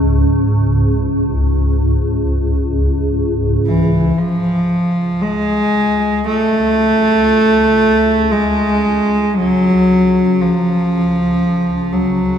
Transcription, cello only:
3.66 E3
4.17 F3
5.21 G#3
6.26 A3
8.32 G#3
9.36 F#3
10.40 F3
11.92 F#3

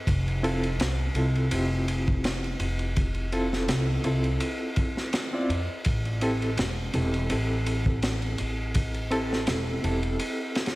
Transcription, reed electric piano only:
0.43 C4 E4 F4 A4
1.16 C4 E4 F4 A4
1.51 C4 E4 F4 G4
3.32 C4 E4 F4 A4
4.05 C4 E4 F4 A4
5.33 C4 E4 F4 D5
6.22 C4 E4 G4 A4
6.94 C4 E4 G4 A4
7.30 C4 E4 G4 A4
9.11 C4 E4 G4 A4
9.83 C4 E4 G4 A4

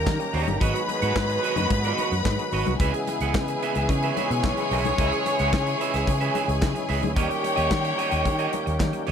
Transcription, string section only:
Already playing: A#4 A#5
0.61 B4 B5
2.80 G#4 G#5
7.16 G4 G5

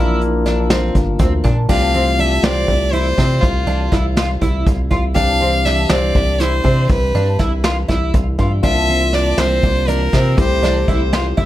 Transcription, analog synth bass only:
Already playing: A#1
0.95 G1
1.19 D2
1.44 A#2
1.69 C2
2.43 C2
2.68 C2
3.18 C3
3.43 C2
3.67 C2
3.92 C2
4.41 C2
4.67 C2
4.91 C2
5.16 C2
5.90 C2
6.15 C2
6.64 C3
6.90 C2
7.15 G2
7.39 C2
7.89 C2
8.14 C2
8.38 G2
8.63 C2
9.38 C2
9.63 C2
10.13 C3
10.38 C2
10.62 C2
10.88 C2
11.37 C2

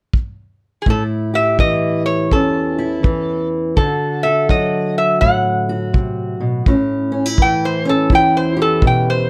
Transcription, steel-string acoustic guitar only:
0.86 A2 E4
1.34 G4
1.59 E3 E4
2.31 E2 C#4
2.78 E4
3.03 E3
3.77 D3 F#4
4.24 A4
4.49 F#3 F#4
5.21 A2
5.69 F#4
5.93 C3
6.40 B2
6.67 A2 C#4
7.12 C#4
7.26 E4
7.39 E3
7.85 C#4
8.11 E2 E4
8.57 G4
8.83 B2

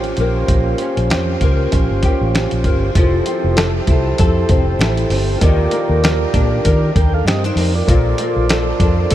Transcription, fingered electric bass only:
Already playing: A1
0.18 A#1
0.48 A#1
0.97 A#1
1.11 F2
1.41 C#2
1.73 A#1
1.91 G1
2.21 A1
2.52 A#1
2.64 G1
2.95 F1
3.44 F1
3.88 C2
4.19 F2
4.49 F1
4.79 A1
5.10 G1
5.41 D#2
5.90 D#2
6.34 A#2
6.65 D#3
6.96 D#2
7.25 G2
7.56 F2
7.88 A#1
8.36 A#1
8.80 F2
9.11 A#2

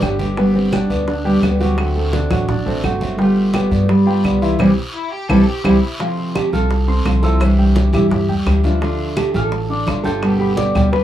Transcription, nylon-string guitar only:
Already playing: D4
0.38 B3
0.55 C4
0.73 D4
1.07 D4
1.43 B3
1.61 C4
2.14 D4
2.49 D4
2.84 A3
3.19 A3
3.55 B3
3.83 A3
3.90 G3
4.60 E3 G3 C4
5.30 E3 G3 C4
5.65 E3 G3 C4
6.35 G4
6.53 A4
7.23 A4
7.41 C5
7.93 G4
8.10 G4
9.17 G4
9.34 A4
10.03 A4
10.39 G4
10.57 D5
10.93 B4

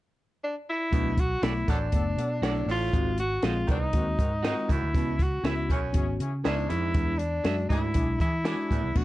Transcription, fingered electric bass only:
0.93 B1
1.43 B1
1.68 A1
1.93 F#1
2.17 B2
2.42 B1
2.66 A1
2.93 G#1
3.43 A#1
3.69 C2
3.94 D#2
4.19 G#2
4.70 C#2
4.82 D2
4.95 C#2
5.43 C#2
5.70 B1
5.95 G#1
6.20 C#3
6.45 C#2
6.71 F2
6.95 E2
7.44 F#2
7.70 G#2
7.96 B1
8.20 E3
8.71 A2
8.83 C2
8.96 B1

